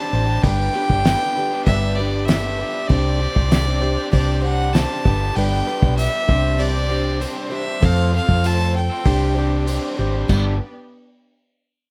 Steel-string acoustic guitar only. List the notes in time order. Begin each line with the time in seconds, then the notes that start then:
Already playing: C4 D4 G4 C5
0.13 D4 G4 C5
0.44 G3 B3 D4 G4 B4
0.74 D4 G4 B4
1.05 B3 D4 G4 B4
1.37 D4 G4 B4
1.68 G3 B3 D4 G4 B4
1.98 D4 G4 B4
2.28 B3 D4 G4 B4
2.59 D4 G4 B4
2.89 C4 D4 G4 C5
3.18 D4 G4 C5
3.50 C4 D4 G4 C5
3.81 D4 G4 C5
4.11 C4 D4 G4 C5
4.42 D4 G4 C5
4.74 C4 D4 G4 C5
5.05 D4 G4 B4
5.37 G3 B3 D4 G4 B4
5.67 D4 G4 B4
5.98 B3 D4 G4 B4
6.28 D4 G4 C5
6.58 C4 D4 G4 C5
6.90 D4 G4 C5
7.20 C4 D4 G4 C5
7.50 D4 G4 C5
7.80 F3 A3 C4 A4 C5
8.13 C4 A4 C5
8.43 A3 C4 A4 C5
8.73 C4 A4 C5
9.05 C4 D4 G4 C5
9.35 D4 G4 C5
9.66 C4 D4 G4 C5
9.97 D4 G4 C5
10.28 G3 B3 D4 G4 B4